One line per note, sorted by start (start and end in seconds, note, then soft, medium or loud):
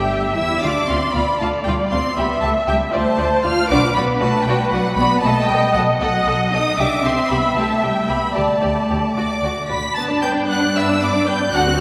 0.00 0.37 G1 medium
0.00 0.37 G3 medium
0.00 0.37 G4 medium
0.00 0.64 E5 medium
0.00 0.37 G5 medium
0.36 0.64 E2 medium
0.36 0.63 E4 medium
0.36 0.63 E5 medium
0.36 0.62 E6 medium
0.62 0.72 D2 medium
0.62 0.89 D4 medium
0.62 0.71 F4 medium
0.62 2.14 D5 medium
0.62 0.71 F5 medium
0.62 0.89 D6 medium
0.88 0.98 D2 medium
0.88 1.15 C4 medium
0.88 0.97 F4 soft
0.88 0.97 F5 soft
0.88 1.14 C6 medium
1.12 1.23 D2 medium
1.12 1.23 B3 medium
1.12 1.23 F4 soft
1.12 1.23 F5 medium
1.12 1.39 B5 medium
1.39 1.49 D2 medium
1.39 1.66 A3 medium
1.39 1.49 F4 medium
1.39 1.50 F5 medium
1.39 1.47 A5 medium
1.65 1.74 D2 medium
1.65 1.92 G3 medium
1.65 1.75 F4 medium
1.65 1.75 F5 soft
1.65 1.73 G5 medium
1.91 2.00 D2 medium
1.91 2.18 C4 medium
1.91 2.00 F4 soft
1.91 2.00 F5 soft
1.91 2.17 C6 medium
2.17 2.25 C#2 medium
2.17 2.43 B3 medium
2.17 2.26 G4 medium
2.17 2.25 E5 medium
2.17 2.93 E5 medium
2.17 2.43 B5 medium
2.41 2.51 C#2 medium
2.41 2.52 A3 medium
2.41 2.50 G4 soft
2.41 2.50 E5 medium
2.41 2.49 A5 medium
2.67 2.76 C#2 medium
2.67 2.78 G3 medium
2.67 2.76 G4 medium
2.67 2.75 E5 medium
2.67 2.75 G5 medium
2.93 3.02 D2 medium
2.93 3.46 A3 medium
2.93 3.01 F4 medium
2.93 3.71 C5 medium
2.93 3.01 D5 medium
2.93 3.45 A5 medium
3.18 3.26 D2 medium
3.18 3.26 F4 soft
3.18 3.26 D5 medium
3.44 3.53 D2 medium
3.44 3.52 F4 medium
3.44 3.71 F4 medium
3.44 3.52 D5 medium
3.44 3.71 F6 loud
3.70 3.79 B1 medium
3.70 3.79 D4 medium
3.70 3.79 F#4 medium
3.70 5.24 B4 medium
3.70 3.80 D5 medium
3.70 3.96 D6 medium
3.95 4.05 B1 medium
3.95 4.21 B3 medium
3.95 4.05 F#4 medium
3.95 4.05 D5 medium
3.95 4.03 B5 medium
4.19 4.30 B1 medium
4.19 4.47 A3 medium
4.19 4.30 F#4 medium
4.19 4.30 D5 medium
4.19 4.46 A5 medium
4.45 4.55 B1 medium
4.45 4.73 G3 medium
4.45 4.57 F#4 medium
4.45 4.56 D5 medium
4.45 4.72 G5 medium
4.71 4.80 B1 medium
4.71 4.98 F#3 medium
4.71 4.81 F#4 medium
4.71 4.82 D5 medium
4.71 4.97 F#5 medium
4.97 5.05 B1 medium
4.97 5.24 B3 medium
4.97 5.09 F#4 medium
4.97 5.08 D5 medium
4.97 5.23 B5 medium
5.22 5.32 B1 medium
5.22 5.50 A3 medium
5.22 6.00 D#5 medium
5.22 5.48 A5 medium
5.26 5.34 A4 medium
5.26 5.34 D#5 medium
5.47 5.58 B1 medium
5.47 5.75 G3 medium
5.47 5.74 G5 medium
5.52 5.60 A4 medium
5.52 5.60 D#5 medium
5.73 5.82 B1 medium
5.73 5.83 F#3 medium
5.73 5.85 A4 medium
5.73 5.85 D#5 medium
5.73 5.81 F#5 medium
5.99 6.09 B1 medium
5.99 6.52 F#3 medium
5.99 6.09 A4 medium
5.99 6.77 D#5 medium
5.99 6.09 D#5 medium
5.99 6.51 F#5 medium
6.27 6.35 B1 medium
6.27 6.35 A4 medium
6.27 6.35 D#5 medium
6.51 6.61 B1 medium
6.51 6.78 D#4 medium
6.51 6.62 A4 medium
6.51 6.61 D#5 soft
6.51 6.77 D#6 medium
6.77 6.87 C2 medium
6.77 7.04 D4 medium
6.77 6.87 G4 medium
6.77 8.36 E5 medium
6.77 6.87 E5 medium
6.77 7.05 D6 medium
7.04 7.13 C2 medium
7.04 7.30 C4 medium
7.04 7.13 G4 medium
7.04 7.13 E5 soft
7.04 7.30 C6 medium
7.30 7.39 C2 medium
7.30 7.56 B3 medium
7.30 7.39 G4 medium
7.30 7.39 E5 soft
7.30 7.57 B5 medium
7.56 7.64 C2 medium
7.56 7.83 A3 medium
7.56 7.65 G4 medium
7.56 7.65 E5 medium
7.56 7.83 A5 medium
7.82 7.91 C2 medium
7.82 8.10 G3 medium
7.82 7.91 G4 soft
7.82 7.90 E5 soft
7.82 8.09 G5 medium
8.09 8.18 C2 medium
8.09 8.37 B3 medium
8.09 8.17 G4 soft
8.09 8.17 E5 soft
8.09 8.36 B5 medium
8.35 8.44 D2 medium
8.35 9.68 A3 medium
8.35 8.44 G4 medium
8.35 8.44 D5 medium
8.35 9.54 D5 medium
8.35 9.16 A5 medium
8.61 8.72 D2 medium
8.61 8.70 G4 soft
8.61 8.69 D5 soft
8.90 8.99 D2 medium
8.90 8.98 G4 soft
8.90 8.98 D5 soft
9.15 9.25 D2 medium
9.15 9.25 F#4 medium
9.15 9.41 D5 medium
9.15 9.66 D6 medium
9.43 9.51 D2 medium
9.43 9.51 F#4 soft
9.43 9.51 D5 soft
9.70 9.79 D2 medium
9.70 9.78 F#4 soft
9.70 9.78 D5 soft
9.70 9.97 B5 medium
9.70 9.97 B6 medium
9.95 11.50 G2 medium
9.95 10.10 B3 medium
9.95 11.50 D4 medium
9.95 10.10 B4 medium
9.95 10.23 A5 medium
9.95 10.03 A6 medium
10.11 10.23 D4 medium
10.11 10.24 D5 soft
10.22 10.36 B3 medium
10.22 10.36 B4 medium
10.22 10.50 G5 medium
10.22 10.30 G6 medium
10.34 10.48 D4 soft
10.34 10.48 D5 soft
10.48 10.61 B3 medium
10.48 10.61 B4 medium
10.48 10.58 F#5 medium
10.48 10.75 F#6 medium
10.63 10.76 D4 medium
10.63 10.76 D5 soft
10.76 10.89 B3 medium
10.76 10.89 B4 medium
10.76 10.84 E5 medium
10.76 11.02 E6 medium
10.90 11.02 D4 medium
10.90 11.02 D5 medium
11.02 11.14 B3 medium
11.02 11.14 B4 medium
11.02 11.28 D5 medium
11.02 11.28 D6 medium
11.15 11.28 D4 medium
11.15 11.28 D5 medium
11.28 11.41 B3 medium
11.28 11.41 B4 medium
11.28 11.38 G5 medium
11.28 11.54 G6 medium
11.42 11.53 D4 medium
11.42 11.54 D5 medium
11.53 11.80 D2 medium
11.53 11.66 D4 medium
11.53 11.80 F#4 medium
11.53 11.66 A4 medium
11.53 11.63 F#5 medium
11.53 11.80 F#6 loud
11.66 11.80 C4 medium
11.66 11.80 F#4 medium